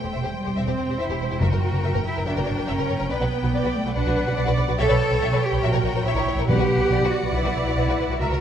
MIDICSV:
0, 0, Header, 1, 7, 480
1, 0, Start_track
1, 0, Key_signature, 2, "minor"
1, 0, Tempo, 424628
1, 1604, Time_signature, 4, 2, 24, 8
1, 9503, End_track
2, 0, Start_track
2, 0, Title_t, "Violin section"
2, 0, Program_c, 0, 48
2, 0, Note_on_c, 0, 79, 45
2, 1557, Note_off_c, 0, 79, 0
2, 1596, Note_on_c, 0, 79, 55
2, 4416, Note_off_c, 0, 79, 0
2, 4458, Note_on_c, 0, 78, 56
2, 5404, Note_on_c, 0, 79, 62
2, 5416, Note_off_c, 0, 78, 0
2, 7287, Note_off_c, 0, 79, 0
2, 7320, Note_on_c, 0, 78, 64
2, 9232, Note_off_c, 0, 78, 0
2, 9267, Note_on_c, 0, 76, 58
2, 9503, Note_off_c, 0, 76, 0
2, 9503, End_track
3, 0, Start_track
3, 0, Title_t, "Viola section"
3, 0, Program_c, 1, 48
3, 0, Note_on_c, 1, 72, 50
3, 152, Note_off_c, 1, 72, 0
3, 166, Note_on_c, 1, 72, 54
3, 1577, Note_off_c, 1, 72, 0
3, 1602, Note_on_c, 1, 70, 55
3, 2556, Note_on_c, 1, 66, 55
3, 2560, Note_off_c, 1, 70, 0
3, 3033, Note_off_c, 1, 66, 0
3, 3036, Note_on_c, 1, 70, 69
3, 3502, Note_off_c, 1, 70, 0
3, 3520, Note_on_c, 1, 71, 66
3, 3984, Note_off_c, 1, 71, 0
3, 3992, Note_on_c, 1, 74, 71
3, 4457, Note_off_c, 1, 74, 0
3, 4469, Note_on_c, 1, 71, 75
3, 4935, Note_off_c, 1, 71, 0
3, 4944, Note_on_c, 1, 74, 82
3, 5411, Note_off_c, 1, 74, 0
3, 5428, Note_on_c, 1, 73, 73
3, 6366, Note_on_c, 1, 70, 75
3, 6378, Note_off_c, 1, 73, 0
3, 6846, Note_on_c, 1, 73, 79
3, 6849, Note_off_c, 1, 70, 0
3, 7320, Note_off_c, 1, 73, 0
3, 7334, Note_on_c, 1, 71, 69
3, 7805, Note_on_c, 1, 74, 86
3, 7806, Note_off_c, 1, 71, 0
3, 9272, Note_off_c, 1, 74, 0
3, 9289, Note_on_c, 1, 70, 62
3, 9503, Note_off_c, 1, 70, 0
3, 9503, End_track
4, 0, Start_track
4, 0, Title_t, "Violin section"
4, 0, Program_c, 2, 48
4, 17, Note_on_c, 2, 72, 33
4, 28, Note_on_c, 2, 67, 33
4, 70, Note_off_c, 2, 72, 0
4, 79, Note_off_c, 2, 67, 0
4, 140, Note_on_c, 2, 76, 54
4, 143, Note_on_c, 2, 72, 56
4, 193, Note_off_c, 2, 76, 0
4, 195, Note_off_c, 2, 72, 0
4, 255, Note_on_c, 2, 72, 40
4, 257, Note_on_c, 2, 67, 47
4, 309, Note_off_c, 2, 72, 0
4, 311, Note_off_c, 2, 67, 0
4, 510, Note_on_c, 2, 72, 38
4, 511, Note_on_c, 2, 67, 43
4, 561, Note_off_c, 2, 72, 0
4, 562, Note_off_c, 2, 67, 0
4, 631, Note_on_c, 2, 76, 66
4, 634, Note_on_c, 2, 72, 55
4, 683, Note_off_c, 2, 76, 0
4, 685, Note_off_c, 2, 72, 0
4, 754, Note_on_c, 2, 67, 38
4, 756, Note_on_c, 2, 72, 42
4, 805, Note_off_c, 2, 67, 0
4, 806, Note_off_c, 2, 72, 0
4, 881, Note_on_c, 2, 72, 38
4, 883, Note_off_c, 2, 72, 0
4, 883, Note_on_c, 2, 72, 36
4, 932, Note_off_c, 2, 72, 0
4, 1012, Note_on_c, 2, 67, 44
4, 1013, Note_on_c, 2, 72, 49
4, 1059, Note_off_c, 2, 67, 0
4, 1060, Note_off_c, 2, 72, 0
4, 1119, Note_on_c, 2, 76, 60
4, 1120, Note_on_c, 2, 72, 60
4, 1169, Note_off_c, 2, 76, 0
4, 1170, Note_off_c, 2, 72, 0
4, 1235, Note_on_c, 2, 72, 47
4, 1242, Note_on_c, 2, 67, 48
4, 1285, Note_off_c, 2, 72, 0
4, 1291, Note_off_c, 2, 67, 0
4, 1362, Note_on_c, 2, 72, 46
4, 1367, Note_off_c, 2, 72, 0
4, 1367, Note_on_c, 2, 72, 47
4, 1415, Note_off_c, 2, 72, 0
4, 1481, Note_on_c, 2, 67, 50
4, 1481, Note_on_c, 2, 72, 53
4, 1529, Note_off_c, 2, 67, 0
4, 1529, Note_off_c, 2, 72, 0
4, 1592, Note_on_c, 2, 70, 63
4, 1593, Note_on_c, 2, 76, 69
4, 1642, Note_off_c, 2, 70, 0
4, 1643, Note_off_c, 2, 76, 0
4, 1716, Note_on_c, 2, 70, 45
4, 1718, Note_off_c, 2, 70, 0
4, 1718, Note_on_c, 2, 70, 42
4, 1767, Note_off_c, 2, 70, 0
4, 1962, Note_on_c, 2, 70, 40
4, 1964, Note_off_c, 2, 70, 0
4, 1964, Note_on_c, 2, 70, 40
4, 2012, Note_off_c, 2, 70, 0
4, 2071, Note_on_c, 2, 70, 67
4, 2078, Note_on_c, 2, 76, 62
4, 2122, Note_off_c, 2, 70, 0
4, 2127, Note_off_c, 2, 76, 0
4, 2200, Note_on_c, 2, 70, 42
4, 2203, Note_off_c, 2, 70, 0
4, 2203, Note_on_c, 2, 70, 48
4, 2251, Note_off_c, 2, 70, 0
4, 2449, Note_on_c, 2, 70, 47
4, 2495, Note_off_c, 2, 70, 0
4, 2558, Note_on_c, 2, 70, 66
4, 2559, Note_on_c, 2, 76, 70
4, 2606, Note_off_c, 2, 70, 0
4, 2607, Note_off_c, 2, 76, 0
4, 2668, Note_on_c, 2, 70, 50
4, 2673, Note_off_c, 2, 70, 0
4, 2673, Note_on_c, 2, 70, 46
4, 2722, Note_off_c, 2, 70, 0
4, 2772, Note_on_c, 2, 70, 52
4, 2776, Note_on_c, 2, 73, 42
4, 2825, Note_off_c, 2, 70, 0
4, 2828, Note_off_c, 2, 73, 0
4, 2899, Note_on_c, 2, 70, 53
4, 2904, Note_off_c, 2, 70, 0
4, 2904, Note_on_c, 2, 70, 54
4, 2954, Note_off_c, 2, 70, 0
4, 3019, Note_on_c, 2, 70, 67
4, 3019, Note_on_c, 2, 76, 64
4, 3070, Note_off_c, 2, 70, 0
4, 3070, Note_off_c, 2, 76, 0
4, 3144, Note_on_c, 2, 70, 55
4, 3148, Note_off_c, 2, 70, 0
4, 3148, Note_on_c, 2, 70, 52
4, 3197, Note_off_c, 2, 70, 0
4, 3261, Note_on_c, 2, 70, 50
4, 3264, Note_on_c, 2, 73, 50
4, 3311, Note_off_c, 2, 70, 0
4, 3313, Note_off_c, 2, 73, 0
4, 3384, Note_on_c, 2, 70, 57
4, 3386, Note_off_c, 2, 70, 0
4, 3386, Note_on_c, 2, 70, 53
4, 3435, Note_off_c, 2, 70, 0
4, 3497, Note_on_c, 2, 74, 69
4, 3501, Note_on_c, 2, 71, 85
4, 3547, Note_off_c, 2, 74, 0
4, 3551, Note_off_c, 2, 71, 0
4, 3622, Note_on_c, 2, 71, 50
4, 3626, Note_on_c, 2, 66, 47
4, 3672, Note_off_c, 2, 71, 0
4, 3674, Note_off_c, 2, 66, 0
4, 3876, Note_on_c, 2, 66, 44
4, 3880, Note_on_c, 2, 71, 50
4, 3922, Note_off_c, 2, 66, 0
4, 3925, Note_off_c, 2, 71, 0
4, 4006, Note_on_c, 2, 74, 67
4, 4008, Note_on_c, 2, 71, 69
4, 4050, Note_off_c, 2, 74, 0
4, 4052, Note_off_c, 2, 71, 0
4, 4115, Note_on_c, 2, 66, 55
4, 4117, Note_on_c, 2, 71, 50
4, 4161, Note_off_c, 2, 66, 0
4, 4163, Note_off_c, 2, 71, 0
4, 4368, Note_on_c, 2, 66, 49
4, 4368, Note_on_c, 2, 71, 49
4, 4411, Note_off_c, 2, 66, 0
4, 4411, Note_off_c, 2, 71, 0
4, 4469, Note_on_c, 2, 71, 69
4, 4473, Note_on_c, 2, 74, 73
4, 4516, Note_off_c, 2, 71, 0
4, 4519, Note_off_c, 2, 74, 0
4, 4595, Note_on_c, 2, 71, 56
4, 4598, Note_on_c, 2, 66, 56
4, 4640, Note_off_c, 2, 71, 0
4, 4643, Note_off_c, 2, 66, 0
4, 4705, Note_on_c, 2, 71, 54
4, 4707, Note_off_c, 2, 71, 0
4, 4707, Note_on_c, 2, 71, 58
4, 4754, Note_off_c, 2, 71, 0
4, 4825, Note_on_c, 2, 66, 58
4, 4828, Note_on_c, 2, 71, 62
4, 4872, Note_off_c, 2, 66, 0
4, 4874, Note_off_c, 2, 71, 0
4, 4935, Note_on_c, 2, 74, 73
4, 4938, Note_on_c, 2, 71, 84
4, 4984, Note_off_c, 2, 74, 0
4, 4986, Note_off_c, 2, 71, 0
4, 5046, Note_on_c, 2, 66, 69
4, 5052, Note_on_c, 2, 71, 63
4, 5097, Note_off_c, 2, 66, 0
4, 5102, Note_off_c, 2, 71, 0
4, 5171, Note_on_c, 2, 71, 67
4, 5178, Note_off_c, 2, 71, 0
4, 5178, Note_on_c, 2, 71, 59
4, 5227, Note_off_c, 2, 71, 0
4, 5286, Note_on_c, 2, 71, 64
4, 5291, Note_on_c, 2, 66, 61
4, 5336, Note_off_c, 2, 71, 0
4, 5340, Note_off_c, 2, 66, 0
4, 5405, Note_on_c, 2, 76, 92
4, 5409, Note_on_c, 2, 73, 90
4, 5456, Note_off_c, 2, 76, 0
4, 5459, Note_off_c, 2, 73, 0
4, 5527, Note_on_c, 2, 73, 46
4, 5530, Note_on_c, 2, 71, 47
4, 5577, Note_off_c, 2, 73, 0
4, 5580, Note_off_c, 2, 71, 0
4, 5768, Note_on_c, 2, 73, 49
4, 5773, Note_on_c, 2, 71, 55
4, 5818, Note_off_c, 2, 73, 0
4, 5822, Note_off_c, 2, 71, 0
4, 5884, Note_on_c, 2, 73, 79
4, 5888, Note_on_c, 2, 76, 75
4, 5934, Note_off_c, 2, 73, 0
4, 5938, Note_off_c, 2, 76, 0
4, 6016, Note_on_c, 2, 73, 58
4, 6020, Note_on_c, 2, 71, 63
4, 6064, Note_off_c, 2, 73, 0
4, 6067, Note_off_c, 2, 71, 0
4, 6241, Note_on_c, 2, 71, 58
4, 6242, Note_on_c, 2, 73, 48
4, 6291, Note_off_c, 2, 71, 0
4, 6292, Note_off_c, 2, 73, 0
4, 6353, Note_on_c, 2, 73, 83
4, 6358, Note_on_c, 2, 76, 88
4, 6405, Note_off_c, 2, 73, 0
4, 6409, Note_off_c, 2, 76, 0
4, 6475, Note_on_c, 2, 70, 63
4, 6479, Note_on_c, 2, 73, 59
4, 6527, Note_off_c, 2, 70, 0
4, 6530, Note_off_c, 2, 73, 0
4, 6611, Note_on_c, 2, 73, 53
4, 6613, Note_off_c, 2, 73, 0
4, 6613, Note_on_c, 2, 73, 57
4, 6661, Note_off_c, 2, 73, 0
4, 6730, Note_on_c, 2, 70, 64
4, 6730, Note_on_c, 2, 73, 63
4, 6778, Note_off_c, 2, 70, 0
4, 6778, Note_off_c, 2, 73, 0
4, 6857, Note_on_c, 2, 73, 79
4, 6860, Note_on_c, 2, 76, 74
4, 6905, Note_off_c, 2, 73, 0
4, 6907, Note_off_c, 2, 76, 0
4, 6961, Note_on_c, 2, 70, 62
4, 6970, Note_on_c, 2, 73, 62
4, 7011, Note_off_c, 2, 70, 0
4, 7019, Note_off_c, 2, 73, 0
4, 7084, Note_on_c, 2, 73, 55
4, 7089, Note_off_c, 2, 73, 0
4, 7089, Note_on_c, 2, 73, 59
4, 7138, Note_off_c, 2, 73, 0
4, 7215, Note_on_c, 2, 73, 60
4, 7216, Note_on_c, 2, 70, 65
4, 7262, Note_off_c, 2, 73, 0
4, 7264, Note_off_c, 2, 70, 0
4, 7328, Note_on_c, 2, 74, 83
4, 7330, Note_on_c, 2, 71, 81
4, 7377, Note_off_c, 2, 74, 0
4, 7379, Note_off_c, 2, 71, 0
4, 7450, Note_on_c, 2, 71, 51
4, 7452, Note_on_c, 2, 66, 49
4, 7499, Note_off_c, 2, 71, 0
4, 7500, Note_off_c, 2, 66, 0
4, 7680, Note_on_c, 2, 66, 47
4, 7684, Note_on_c, 2, 71, 45
4, 7732, Note_off_c, 2, 66, 0
4, 7735, Note_off_c, 2, 71, 0
4, 7813, Note_on_c, 2, 74, 83
4, 7814, Note_on_c, 2, 71, 74
4, 7862, Note_off_c, 2, 74, 0
4, 7863, Note_off_c, 2, 71, 0
4, 7949, Note_on_c, 2, 66, 50
4, 7949, Note_on_c, 2, 71, 50
4, 7995, Note_off_c, 2, 66, 0
4, 7995, Note_off_c, 2, 71, 0
4, 8176, Note_on_c, 2, 71, 42
4, 8177, Note_on_c, 2, 66, 46
4, 8225, Note_off_c, 2, 71, 0
4, 8226, Note_off_c, 2, 66, 0
4, 8310, Note_on_c, 2, 74, 82
4, 8313, Note_on_c, 2, 71, 81
4, 8357, Note_off_c, 2, 74, 0
4, 8360, Note_off_c, 2, 71, 0
4, 8424, Note_on_c, 2, 66, 50
4, 8426, Note_on_c, 2, 71, 45
4, 8472, Note_off_c, 2, 66, 0
4, 8475, Note_off_c, 2, 71, 0
4, 8548, Note_on_c, 2, 71, 54
4, 8596, Note_off_c, 2, 71, 0
4, 8667, Note_on_c, 2, 66, 62
4, 8667, Note_on_c, 2, 71, 58
4, 8716, Note_off_c, 2, 66, 0
4, 8716, Note_off_c, 2, 71, 0
4, 8780, Note_on_c, 2, 71, 78
4, 8782, Note_on_c, 2, 74, 80
4, 8831, Note_off_c, 2, 71, 0
4, 8833, Note_off_c, 2, 74, 0
4, 8916, Note_on_c, 2, 66, 61
4, 8916, Note_on_c, 2, 71, 61
4, 8964, Note_off_c, 2, 66, 0
4, 8964, Note_off_c, 2, 71, 0
4, 9040, Note_on_c, 2, 71, 61
4, 9041, Note_off_c, 2, 71, 0
4, 9041, Note_on_c, 2, 71, 55
4, 9088, Note_off_c, 2, 71, 0
4, 9162, Note_on_c, 2, 71, 51
4, 9165, Note_on_c, 2, 66, 57
4, 9209, Note_off_c, 2, 71, 0
4, 9212, Note_off_c, 2, 66, 0
4, 9282, Note_on_c, 2, 70, 83
4, 9288, Note_on_c, 2, 76, 77
4, 9329, Note_off_c, 2, 70, 0
4, 9334, Note_off_c, 2, 76, 0
4, 9409, Note_on_c, 2, 70, 47
4, 9455, Note_off_c, 2, 70, 0
4, 9503, End_track
5, 0, Start_track
5, 0, Title_t, "Cello section"
5, 0, Program_c, 3, 48
5, 0, Note_on_c, 3, 57, 63
5, 391, Note_on_c, 3, 55, 60
5, 404, Note_off_c, 3, 57, 0
5, 630, Note_on_c, 3, 60, 72
5, 634, Note_off_c, 3, 55, 0
5, 1118, Note_on_c, 3, 64, 67
5, 1119, Note_off_c, 3, 60, 0
5, 1600, Note_off_c, 3, 64, 0
5, 1602, Note_on_c, 3, 66, 71
5, 2311, Note_on_c, 3, 64, 73
5, 2321, Note_off_c, 3, 66, 0
5, 2551, Note_off_c, 3, 64, 0
5, 2554, Note_on_c, 3, 62, 72
5, 3022, Note_off_c, 3, 62, 0
5, 3032, Note_on_c, 3, 61, 79
5, 3509, Note_off_c, 3, 61, 0
5, 3514, Note_on_c, 3, 59, 80
5, 4228, Note_off_c, 3, 59, 0
5, 4240, Note_on_c, 3, 57, 75
5, 4472, Note_off_c, 3, 57, 0
5, 4478, Note_on_c, 3, 62, 80
5, 4939, Note_off_c, 3, 62, 0
5, 5428, Note_on_c, 3, 69, 108
5, 6095, Note_off_c, 3, 69, 0
5, 6134, Note_on_c, 3, 67, 90
5, 6373, Note_off_c, 3, 67, 0
5, 6373, Note_on_c, 3, 66, 82
5, 6851, Note_on_c, 3, 64, 84
5, 6853, Note_off_c, 3, 66, 0
5, 7328, Note_on_c, 3, 67, 109
5, 7332, Note_off_c, 3, 64, 0
5, 8042, Note_off_c, 3, 67, 0
5, 8050, Note_on_c, 3, 66, 83
5, 8291, Note_on_c, 3, 64, 81
5, 8298, Note_off_c, 3, 66, 0
5, 8760, Note_off_c, 3, 64, 0
5, 8773, Note_on_c, 3, 64, 82
5, 9259, Note_off_c, 3, 64, 0
5, 9274, Note_on_c, 3, 66, 71
5, 9503, Note_off_c, 3, 66, 0
5, 9503, End_track
6, 0, Start_track
6, 0, Title_t, "Timpani"
6, 0, Program_c, 4, 47
6, 1585, Note_on_c, 4, 42, 67
6, 2267, Note_off_c, 4, 42, 0
6, 7334, Note_on_c, 4, 47, 73
6, 8014, Note_off_c, 4, 47, 0
6, 9503, End_track
7, 0, Start_track
7, 0, Title_t, "Double bass section"
7, 0, Program_c, 5, 48
7, 62, Note_on_c, 5, 28, 43
7, 107, Note_off_c, 5, 28, 0
7, 167, Note_on_c, 5, 28, 52
7, 215, Note_off_c, 5, 28, 0
7, 293, Note_on_c, 5, 28, 38
7, 339, Note_off_c, 5, 28, 0
7, 534, Note_on_c, 5, 28, 41
7, 580, Note_off_c, 5, 28, 0
7, 653, Note_on_c, 5, 28, 60
7, 700, Note_off_c, 5, 28, 0
7, 766, Note_on_c, 5, 28, 40
7, 814, Note_off_c, 5, 28, 0
7, 893, Note_on_c, 5, 28, 42
7, 940, Note_off_c, 5, 28, 0
7, 1008, Note_on_c, 5, 28, 42
7, 1056, Note_off_c, 5, 28, 0
7, 1123, Note_on_c, 5, 28, 61
7, 1171, Note_off_c, 5, 28, 0
7, 1246, Note_on_c, 5, 28, 44
7, 1294, Note_off_c, 5, 28, 0
7, 1369, Note_on_c, 5, 28, 39
7, 1416, Note_off_c, 5, 28, 0
7, 1485, Note_on_c, 5, 28, 45
7, 1533, Note_off_c, 5, 28, 0
7, 1593, Note_on_c, 5, 30, 61
7, 1643, Note_off_c, 5, 30, 0
7, 1721, Note_on_c, 5, 30, 38
7, 1769, Note_off_c, 5, 30, 0
7, 1961, Note_on_c, 5, 30, 49
7, 2009, Note_off_c, 5, 30, 0
7, 2092, Note_on_c, 5, 30, 69
7, 2138, Note_off_c, 5, 30, 0
7, 2206, Note_on_c, 5, 30, 44
7, 2254, Note_off_c, 5, 30, 0
7, 2451, Note_on_c, 5, 30, 43
7, 2497, Note_off_c, 5, 30, 0
7, 2564, Note_on_c, 5, 30, 67
7, 2611, Note_off_c, 5, 30, 0
7, 2689, Note_on_c, 5, 30, 50
7, 2735, Note_off_c, 5, 30, 0
7, 2811, Note_on_c, 5, 30, 49
7, 2856, Note_off_c, 5, 30, 0
7, 2925, Note_on_c, 5, 30, 49
7, 2971, Note_off_c, 5, 30, 0
7, 3041, Note_on_c, 5, 30, 58
7, 3087, Note_off_c, 5, 30, 0
7, 3157, Note_on_c, 5, 30, 53
7, 3204, Note_off_c, 5, 30, 0
7, 3282, Note_on_c, 5, 30, 55
7, 3327, Note_off_c, 5, 30, 0
7, 3401, Note_on_c, 5, 30, 50
7, 3446, Note_off_c, 5, 30, 0
7, 3518, Note_on_c, 5, 35, 73
7, 3564, Note_off_c, 5, 35, 0
7, 3635, Note_on_c, 5, 35, 49
7, 3682, Note_off_c, 5, 35, 0
7, 3880, Note_on_c, 5, 35, 57
7, 3926, Note_off_c, 5, 35, 0
7, 3993, Note_on_c, 5, 35, 71
7, 4040, Note_off_c, 5, 35, 0
7, 4127, Note_on_c, 5, 35, 49
7, 4171, Note_off_c, 5, 35, 0
7, 4350, Note_on_c, 5, 35, 50
7, 4397, Note_off_c, 5, 35, 0
7, 4477, Note_on_c, 5, 35, 81
7, 4522, Note_off_c, 5, 35, 0
7, 4592, Note_on_c, 5, 35, 50
7, 4638, Note_off_c, 5, 35, 0
7, 4717, Note_on_c, 5, 35, 58
7, 4762, Note_off_c, 5, 35, 0
7, 4836, Note_on_c, 5, 35, 58
7, 4881, Note_off_c, 5, 35, 0
7, 4945, Note_on_c, 5, 35, 72
7, 4992, Note_off_c, 5, 35, 0
7, 5063, Note_on_c, 5, 35, 62
7, 5110, Note_off_c, 5, 35, 0
7, 5183, Note_on_c, 5, 35, 55
7, 5230, Note_off_c, 5, 35, 0
7, 5301, Note_on_c, 5, 35, 55
7, 5349, Note_off_c, 5, 35, 0
7, 5417, Note_on_c, 5, 35, 79
7, 5466, Note_off_c, 5, 35, 0
7, 5540, Note_on_c, 5, 35, 55
7, 5587, Note_off_c, 5, 35, 0
7, 5777, Note_on_c, 5, 35, 58
7, 5825, Note_off_c, 5, 35, 0
7, 5895, Note_on_c, 5, 35, 73
7, 5943, Note_off_c, 5, 35, 0
7, 6011, Note_on_c, 5, 35, 49
7, 6060, Note_off_c, 5, 35, 0
7, 6245, Note_on_c, 5, 35, 53
7, 6295, Note_off_c, 5, 35, 0
7, 6355, Note_on_c, 5, 34, 78
7, 6407, Note_off_c, 5, 34, 0
7, 6471, Note_on_c, 5, 34, 53
7, 6523, Note_off_c, 5, 34, 0
7, 6595, Note_on_c, 5, 34, 52
7, 6646, Note_off_c, 5, 34, 0
7, 6704, Note_on_c, 5, 34, 54
7, 6758, Note_off_c, 5, 34, 0
7, 6818, Note_on_c, 5, 34, 75
7, 6873, Note_off_c, 5, 34, 0
7, 6941, Note_on_c, 5, 34, 58
7, 6995, Note_off_c, 5, 34, 0
7, 7062, Note_on_c, 5, 34, 54
7, 7116, Note_off_c, 5, 34, 0
7, 7181, Note_on_c, 5, 34, 56
7, 7236, Note_off_c, 5, 34, 0
7, 7300, Note_on_c, 5, 35, 76
7, 7355, Note_off_c, 5, 35, 0
7, 7422, Note_on_c, 5, 35, 56
7, 7476, Note_off_c, 5, 35, 0
7, 7671, Note_on_c, 5, 35, 59
7, 7724, Note_off_c, 5, 35, 0
7, 7795, Note_on_c, 5, 35, 74
7, 7848, Note_off_c, 5, 35, 0
7, 7916, Note_on_c, 5, 35, 54
7, 7969, Note_off_c, 5, 35, 0
7, 8160, Note_on_c, 5, 35, 55
7, 8213, Note_off_c, 5, 35, 0
7, 8277, Note_on_c, 5, 35, 86
7, 8331, Note_off_c, 5, 35, 0
7, 8405, Note_on_c, 5, 35, 52
7, 8457, Note_off_c, 5, 35, 0
7, 8525, Note_on_c, 5, 35, 55
7, 8578, Note_off_c, 5, 35, 0
7, 8644, Note_on_c, 5, 35, 55
7, 8698, Note_off_c, 5, 35, 0
7, 8771, Note_on_c, 5, 35, 75
7, 8823, Note_off_c, 5, 35, 0
7, 8894, Note_on_c, 5, 35, 50
7, 8946, Note_off_c, 5, 35, 0
7, 9011, Note_on_c, 5, 35, 50
7, 9064, Note_off_c, 5, 35, 0
7, 9139, Note_on_c, 5, 35, 49
7, 9191, Note_off_c, 5, 35, 0
7, 9254, Note_on_c, 5, 37, 71
7, 9307, Note_off_c, 5, 37, 0
7, 9385, Note_on_c, 5, 37, 49
7, 9435, Note_off_c, 5, 37, 0
7, 9503, End_track
0, 0, End_of_file